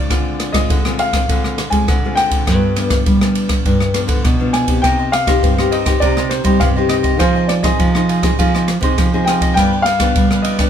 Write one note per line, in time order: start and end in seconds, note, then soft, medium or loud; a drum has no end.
0.00 0.11 C#3 medium
0.00 0.56 D5 medium
0.10 0.66 D3 medium
0.10 0.61 D3 medium
0.10 0.50 G#3 medium
0.10 0.50 C4 medium
0.10 0.50 F4 medium
0.10 kick medium
0.10 cross-stick medium
0.10 ride soft
0.40 cross-stick medium
0.40 ride soft
0.52 0.79 G#3 medium
0.52 0.79 C4 medium
0.52 0.80 F4 medium
0.52 0.99 D#5 medium
0.52 kick medium
0.52 cross-stick medium
0.52 ride medium
0.70 1.26 D3 medium
0.70 1.20 D3 medium
0.70 kick medium
0.70 ride soft
0.85 1.09 G#3 medium
0.85 1.10 C4 medium
0.85 1.10 F4 medium
0.85 cross-stick medium
0.99 1.76 F5 medium
0.99 ride medium
1.13 1.24 G#3 medium
1.13 1.24 C4 medium
1.13 1.24 F4 medium
1.13 kick medium
1.13 cross-stick medium
1.13 ride soft
1.29 1.67 D3 loud
1.29 1.86 D3 medium
1.29 1.57 G#3 medium
1.29 1.57 C4 medium
1.29 1.57 F4 medium
1.29 kick medium
1.29 ride medium
1.44 cross-stick medium
1.58 cross-stick medium
1.58 ride soft
1.70 1.84 G#3 medium
1.70 1.98 G#3 medium
1.70 1.98 C4 medium
1.70 1.98 F4 medium
1.70 2.18 G#5 medium
1.70 kick medium
1.70 ride soft
1.88 2.47 D3 medium
1.88 2.45 D3 medium
1.88 kick medium
1.88 cross-stick medium
1.88 ride soft
2.04 2.43 G#3 medium
2.04 2.44 C4 medium
2.04 2.44 F4 medium
2.15 3.31 G5 loud
2.15 cross-stick medium
2.15 ride soft
2.31 kick medium
2.31 ride soft
2.47 2.98 G2 medium
2.47 3.04 G2 medium
2.47 2.72 F3 medium
2.47 2.73 B3 medium
2.47 2.73 D4 medium
2.47 kick medium
2.47 cross-stick medium
2.47 ride soft
2.76 3.16 F3 medium
2.76 3.16 B3 medium
2.76 3.17 D4 medium
2.76 cross-stick medium
2.76 ride soft
2.90 kick medium
2.90 cross-stick medium
2.90 ride medium
3.06 3.63 D3 medium
3.06 3.57 G3 medium
3.06 kick medium
3.06 ride soft
3.21 3.76 F3 medium
3.21 3.76 B3 medium
3.21 3.76 D4 medium
3.21 cross-stick medium
3.35 ride medium
3.49 kick medium
3.49 cross-stick medium
3.49 ride medium
3.65 4.21 G2 medium
3.65 4.03 G2 medium
3.65 kick medium
3.65 ride soft
3.80 cross-stick medium
3.94 4.34 F3 medium
3.94 4.35 B3 medium
3.94 4.35 D4 medium
3.94 cross-stick medium
3.94 ride soft
4.08 4.21 D3 medium
4.08 kick medium
4.08 ride medium
4.24 4.84 B2 medium
4.24 4.81 D3 medium
4.24 kick medium
4.24 cross-stick medium
4.24 ride soft
4.40 4.64 F3 medium
4.40 4.65 B3 medium
4.40 4.65 D4 medium
4.53 4.81 G#5 medium
4.53 cross-stick medium
4.53 ride soft
4.67 5.08 C4 medium
4.67 5.08 D#4 soft
4.67 5.08 G4 medium
4.67 kick medium
4.67 ride medium
4.82 5.40 C3 medium
4.82 5.34 C3 medium
4.82 4.97 D#4 medium
4.82 4.98 G4 medium
4.82 4.98 C5 medium
4.82 4.98 D#5 medium
4.82 5.13 G5 loud
4.82 kick medium
4.82 cross-stick medium
4.82 ride soft
4.99 5.12 G4 soft
4.99 5.12 C5 soft
4.99 5.12 D#5 medium
5.12 5.74 F5 medium
5.12 muted cavaquinho stroke soft
5.12 cross-stick medium
5.12 ride medium
5.27 5.53 C4 medium
5.27 5.53 D#4 medium
5.27 5.53 G4 medium
5.27 5.57 G4 soft
5.27 5.56 C5 medium
5.27 5.56 D#5 medium
5.27 kick medium
5.27 cross-stick medium
5.27 ride medium
5.43 5.99 G2 medium
5.43 5.93 C4 medium
5.43 kick medium
5.43 ride soft
5.58 5.83 C4 medium
5.58 5.83 D#4 medium
5.58 5.83 G4 medium
5.58 5.71 G4 soft
5.58 5.72 C5 soft
5.58 5.71 D#5 medium
5.58 cross-stick medium
5.71 5.86 D#4 soft
5.71 5.86 G4 medium
5.71 5.85 C5 soft
5.71 5.99 D#5 medium
5.71 5.84 D#5 medium
5.71 ride soft
5.85 5.96 C4 medium
5.85 5.97 D#4 medium
5.85 5.97 G4 medium
5.85 6.01 G4 medium
5.85 6.00 C5 medium
5.85 6.00 D#5 medium
5.85 kick medium
5.85 cross-stick medium
5.85 ride medium
6.00 6.39 C3 medium
6.00 6.58 C3 medium
6.00 6.42 C4 medium
6.00 6.15 D#4 medium
6.00 6.42 D#4 soft
6.00 6.16 G4 medium
6.00 6.42 G4 medium
6.00 6.16 C5 medium
6.00 6.31 D5 loud
6.00 6.16 D#5 medium
6.00 kick medium
6.00 ride soft
6.17 6.30 G4 soft
6.17 6.31 C5 soft
6.17 6.31 D#5 medium
6.17 cross-stick medium
6.29 6.61 C5 medium
6.29 muted cavaquinho stroke soft
6.29 cross-stick medium
6.29 ride soft
6.44 6.57 G3 medium
6.44 6.71 C4 medium
6.44 6.71 D#4 medium
6.44 6.75 G4 medium
6.44 6.71 G4 medium
6.44 6.74 C5 medium
6.44 6.74 D#5 medium
6.44 kick medium
6.44 ride medium
6.60 7.18 G2 medium
6.60 7.20 C3 medium
6.60 6.67 F5 medium
6.60 kick medium
6.60 cross-stick medium
6.60 ride soft
6.76 7.16 C4 medium
6.76 7.16 D#4 medium
6.76 6.89 G4 soft
6.76 7.17 G4 medium
6.76 6.89 C5 soft
6.76 6.90 D#5 soft
6.89 7.04 D#4 medium
6.89 7.04 G4 medium
6.89 7.03 C5 medium
6.89 6.96 D#5 medium
6.89 7.02 D#5 medium
6.89 cross-stick medium
6.89 ride soft
7.03 7.19 G4 soft
7.03 7.18 C5 medium
7.03 7.18 D#5 medium
7.03 kick medium
7.03 ride soft
7.19 7.71 F3 medium
7.19 7.76 F3 medium
7.19 7.60 C4 medium
7.19 7.60 D#4 medium
7.19 7.33 F4 medium
7.19 7.34 G#4 medium
7.19 7.60 G#4 medium
7.19 7.50 C5 medium
7.19 7.34 C5 medium
7.19 7.34 D#5 medium
7.19 kick medium
7.19 cross-stick medium
7.19 ride soft
7.35 7.48 G#4 soft
7.35 7.49 C5 medium
7.35 7.49 D#5 medium
7.48 7.63 D5 medium
7.48 muted cavaquinho stroke soft
7.48 cross-stick medium
7.48 ride soft
7.63 7.89 C4 medium
7.63 7.89 D#4 medium
7.63 7.89 G#4 medium
7.63 7.93 G#4 medium
7.63 7.93 C5 medium
7.63 8.19 D#5 medium
7.63 7.92 D#5 medium
7.63 kick medium
7.63 cross-stick medium
7.63 ride soft
7.79 8.36 C3 medium
7.79 8.30 F3 medium
7.79 kick medium
7.79 ride soft
7.95 8.19 C4 medium
7.95 8.19 D#4 medium
7.95 8.20 G#4 medium
7.95 8.08 G#4 soft
7.95 8.08 C5 medium
7.95 8.08 D#5 medium
7.95 cross-stick medium
8.09 8.22 F4 soft
8.09 8.23 G#4 medium
8.09 8.23 C5 soft
8.09 8.22 D#5 medium
8.09 ride soft
8.22 8.33 C4 medium
8.22 8.33 D#4 medium
8.22 8.34 G#4 medium
8.22 8.38 G#4 soft
8.22 8.37 C5 soft
8.22 8.37 D#5 medium
8.22 kick medium
8.22 cross-stick medium
8.22 ride medium
8.39 8.95 F3 medium
8.39 8.76 F3 medium
8.39 8.66 C4 medium
8.39 8.67 D#4 medium
8.39 8.52 F4 medium
8.39 8.52 G#4 medium
8.39 8.67 G#4 medium
8.39 8.53 C5 medium
8.39 8.53 D#5 medium
8.39 kick medium
8.39 ride soft
8.54 8.68 G#4 soft
8.54 8.68 C5 soft
8.54 8.67 D#5 soft
8.54 cross-stick medium
8.68 muted cavaquinho stroke soft
8.68 cross-stick medium
8.68 ride soft
8.81 8.94 C3 medium
8.81 9.08 C4 medium
8.81 9.08 D#4 medium
8.81 9.08 G#4 medium
8.81 9.12 G#4 medium
8.81 9.11 C5 medium
8.81 9.11 D#5 medium
8.81 kick medium
8.81 ride medium
8.98 9.54 C3 soft
8.98 9.57 F3 medium
8.98 kick medium
8.98 cross-stick medium
8.98 ride medium
9.13 9.52 C4 medium
9.13 9.53 D#4 medium
9.13 9.53 G#4 medium
9.13 9.27 G#4 soft
9.13 9.27 C5 soft
9.13 9.27 D#5 medium
9.25 9.41 F4 soft
9.25 9.53 G5 loud
9.25 cross-stick medium
9.25 ride medium
9.29 9.41 G#4 medium
9.29 9.41 C5 soft
9.29 9.40 D#5 medium
9.41 9.56 G#4 soft
9.41 9.56 C5 medium
9.41 9.55 D#5 medium
9.41 kick medium
9.41 ride medium
9.54 10.13 G2 medium
9.54 9.84 F3 medium
9.54 10.07 G3 medium
9.54 9.84 B3 medium
9.54 9.85 D4 medium
9.54 9.70 F4 medium
9.54 9.86 G5 loud
9.54 kick medium
9.54 cross-stick medium
9.54 ride medium
9.59 9.71 G4 medium
9.59 9.71 B4 medium
9.59 9.71 D5 medium
9.73 9.86 G4 soft
9.73 9.86 B4 soft
9.73 9.86 D5 medium
9.82 10.45 F5 medium
9.82 cross-stick medium
9.82 ride medium
9.87 muted cavaquinho stroke soft
10.00 10.25 F3 medium
10.00 10.25 B3 medium
10.00 10.26 D4 medium
10.00 10.30 G4 medium
10.00 10.29 B4 medium
10.00 10.29 D5 medium
10.00 kick medium
10.00 cross-stick medium
10.00 ride medium
10.15 10.70 D3 medium
10.15 10.66 G3 medium
10.15 kick medium
10.15 ride soft
10.31 10.56 F3 medium
10.31 10.56 B3 medium
10.31 10.56 D4 medium
10.31 10.44 G4 soft
10.31 10.45 B4 soft
10.31 10.45 D5 soft
10.31 cross-stick medium
10.42 10.58 F4 soft
10.42 10.59 G4 medium
10.42 10.59 B4 medium
10.42 10.57 D5 soft
10.42 10.70 D#5 medium
10.42 ride medium
10.59 10.70 F3 medium
10.59 10.70 B3 medium
10.59 10.70 D4 medium
10.59 10.70 G4 medium
10.59 10.70 B4 medium
10.59 10.70 D5 medium
10.59 kick medium
10.59 cross-stick medium
10.59 ride medium